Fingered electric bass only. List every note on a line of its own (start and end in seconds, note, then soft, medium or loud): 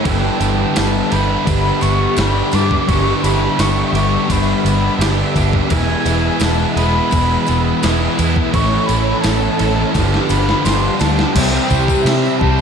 0.05 0.29 G1 medium
0.40 0.64 G1 medium
0.77 1.00 G1 medium
1.12 1.35 G1 medium
1.47 1.70 G1 medium
1.82 2.06 G1 medium
2.17 2.41 G1 medium
2.53 2.76 G2 medium
2.89 3.12 G1 loud
3.24 3.47 G1 medium
3.59 3.82 G1 medium
3.93 4.16 G1 medium
4.30 4.53 G1 medium
4.65 4.88 G1 medium
4.99 5.22 G1 medium
5.35 5.59 G1 medium
5.71 5.94 E1 medium
6.05 6.29 E1 medium
6.41 6.64 E1 medium
6.76 7.00 E1 medium
7.13 7.36 E1 loud
7.49 7.72 E1 medium
7.84 8.07 E1 medium
8.19 8.42 E2 loud
8.54 8.77 A1 medium
8.89 9.12 A1 medium
9.25 9.48 A1 medium
9.60 9.83 A1 medium
9.95 10.18 G1 medium
10.30 10.53 G1 medium
10.66 10.89 G1 medium
11.01 11.24 D2 medium
11.35 11.58 C2 medium
11.71 11.93 C2 medium
12.05 12.28 C3 medium
12.41 12.61 C2 medium